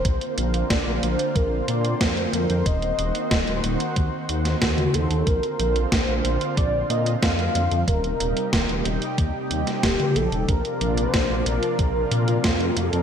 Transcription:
Already playing: A#3 C5
0.05 A#1 D3 C4 F4, kick, closed hi-hat
0.21 closed hi-hat
0.38 A#1, closed hi-hat
0.54 closed hi-hat
0.70 A#1 D5, kick, snare, closed hi-hat
0.87 A#1
1.03 A#1 C5, closed hi-hat
1.19 closed hi-hat
1.36 A#1 A#4, kick, closed hi-hat
1.68 A#2 D5, closed hi-hat
1.85 closed hi-hat
2.01 F2 C5, kick, snare, closed hi-hat
2.17 closed hi-hat
2.33 F2 A#4, closed hi-hat
2.50 F2, closed hi-hat
2.66 D#1 D#3 F#4 D#5, kick, closed hi-hat
2.82 closed hi-hat
2.99 D#1, closed hi-hat
3.15 closed hi-hat
3.31 D#1, kick, snare, closed hi-hat
3.47 D#1, closed hi-hat
3.64 D#1, closed hi-hat
3.80 closed hi-hat
3.96 D#2, kick, closed hi-hat
4.29 D#2, closed hi-hat
4.45 snare, closed hi-hat
4.62 D#2 F#4, kick, snare, closed hi-hat
4.78 closed hi-hat, mid tom
4.94 D#2 A4, closed hi-hat
5.10 D#2, closed hi-hat
5.27 A#1 D3 C4 F4 A#4, kick, closed hi-hat
5.43 closed hi-hat
5.59 A#1, closed hi-hat
5.76 closed hi-hat
5.92 A#1 C5, kick, snare, closed hi-hat
6.08 A#1
6.25 A#1, closed hi-hat
6.41 closed hi-hat
6.57 A#1 D5, kick, closed hi-hat
6.90 A#2 D#5, closed hi-hat
7.06 closed hi-hat
7.22 F2 F5, kick, snare, closed hi-hat
7.39 closed hi-hat
7.55 F2, closed hi-hat
7.71 F2, closed hi-hat
7.88 D#1 C3 G3 D#4 G4 A#4, kick, closed hi-hat
8.04 closed hi-hat
8.20 D#1, closed hi-hat
8.37 closed hi-hat
8.53 D#1, kick, snare, closed hi-hat
8.69 D#1, closed hi-hat
8.85 D#1, closed hi-hat
9.02 closed hi-hat
9.18 D#2, kick, closed hi-hat
9.51 D#2, closed hi-hat
9.67 snare, closed hi-hat
9.83 D#1 G4, kick, snare, closed hi-hat
10.00 closed hi-hat, mid tom
10.16 A#1 A4, closed hi-hat
10.32 D#1, closed hi-hat
10.48 A#1 F3 A#3 D4 F4 A#4, kick, closed hi-hat
10.65 closed hi-hat
10.81 A#1, closed hi-hat
10.97 C5, closed hi-hat
11.14 A#1, kick, snare, closed hi-hat
11.30 A#1
11.46 A#1 A#4, closed hi-hat
11.63 closed hi-hat
11.79 A#1, kick, closed hi-hat
12.11 A#2, closed hi-hat
12.28 F4, closed hi-hat
12.44 F2, kick, snare, closed hi-hat
12.60 closed hi-hat
12.77 F2 A4, closed hi-hat
12.93 F2, closed hi-hat

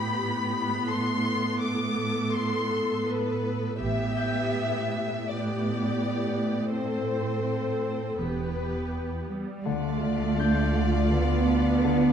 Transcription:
Already playing: A2 B3 G4 B5
0.88 A4 A5 C6 B6
1.62 D6
2.35 C6
3.07 B4
3.80 A1 A2 B3 G4 E5
4.16 G5 G6
5.27 B3 G4 D5
6.73 C4 A4 C5
8.19 E1 E2 B3 G4 B4
9.29 G3
9.65 D2 D3 A3 F4 D5 F5
10.01 D3
10.38 D4 G6
10.75 D3
11.11 D3 B3
11.47 D4
11.84 D3

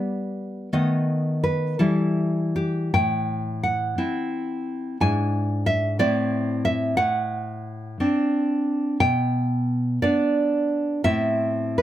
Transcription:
Already playing: G3 B3 D5
0.73 D#3 A3 B3 D#5
1.44 B4
1.79 E3 G3 E4 A4
2.56 G4
2.94 A2 G5
3.63 F#5
3.98 C4 E4
5.00 G#2 D4 E4 G#5
5.66 E5
5.99 A2 C4 E4 D5
6.65 E5
6.97 A2 F#5
8.00 C4 D4
9.00 B2 G5
10.02 B3 D4 D5
11.04 A2 C4 E4 E5
11.78 B4

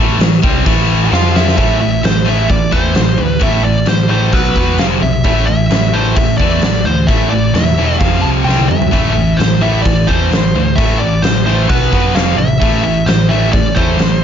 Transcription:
Already playing: A1 A2 E3 A3
0.19 A1 A2 E3, snare, open hi-hat
0.42 C2 C3 G3 C4, kick
0.65 A1 A2 E3 A3, kick, open hi-hat
1.11 F2 F3 C4 F4 F5, snare
1.36 E5, snare
1.48 snare
1.57 A1 A2 E3 A3, kick, open hi-hat
1.81 A2 E3 E5
2.03 A1 A2 E3 C5, snare, open hi-hat
2.25 A2 E3 A3
2.29 E5
2.49 A1 A2 E3 D5, kick, open hi-hat
2.71 E2 A2 E3 A3 C5, kick
2.94 A1 A2 E3, snare, open hi-hat
3.18 D2 A2 E3
3.23 B4
3.39 A1 A2 E3 A3 E5, kick, open hi-hat
3.64 A2 E3 D5
3.86 A1 A2 E3 C5, snare, open hi-hat
4.08 A2 E3 A3 C5
4.32 B1 B2 F#3 B3 B4, kick, open hi-hat
4.55 E1 B2 F#3 B3, kick
4.78 F1 F2 C3 F3 F5, snare, open hi-hat
5.01 B1 F2 C3 E5
5.24 A1 A2 E3 A3, kick, open hi-hat
5.47 A2 E3 E5
5.70 A1 A2 E3, snare, open hi-hat
5.94 A2 E3 A3 C5
6.16 A1 A2 E3 E5, kick, open hi-hat
6.37 E2 A2 E3 A3 D5, kick
6.60 A1 A2 E3, snare, open hi-hat
6.84 D2 A2 E3 C5
7.07 A1 A2 E3 A3 E5, kick, open hi-hat
7.30 A2 E3 D5
7.53 E1 A2 E3 E5, snare, open hi-hat
7.78 A2 E3 A3
8.00 F1 F2 C3 F3 F5, kick, open hi-hat
8.21 C2 F2 C3 F3 A5
8.44 C2 C3 G3 C4 G5
8.49 snare
8.59 high tom
8.68 F2 C3 G3 E5, mid tom
8.82 floor tom
8.91 A1 A2 E3 A3, kick, open hi-hat
9.13 A2 E3 E5
9.37 A1 A2 E3 C5, open hi-hat
9.41 snare
9.61 A2 E3 A3 E5
9.82 A1 A2 E3 D5, kick
9.86 open hi-hat
10.07 E2 A2 E3 A3 C5, kick
10.31 A1 A2 E3, snare, open hi-hat
10.53 D2 A2 E3
10.75 A1 A2 E3 A3 E5, kick, open hi-hat
10.99 A2 E3 D5
11.22 A1 A2 E3 C5, snare, open hi-hat
11.46 A2 E3 A3 C5
11.69 B1 B2 F#3 B3 B4, kick, open hi-hat
11.93 F#2 B2 F#3 B3, kick
12.15 F1 F2 C3 F3 F5, snare, open hi-hat
12.36 A1 F2 C3 E5
12.61 A1 A2 E3 A3, kick, open hi-hat
12.84 A2 E3 E5
13.06 A1 A2 E3 C5, snare, open hi-hat
13.29 A2 E3 A3 E5
13.53 A1 A2 E3 D5, kick, open hi-hat
13.75 E2 A2 E3 A3 C5, kick
13.98 A1 A2 E3, snare, open hi-hat

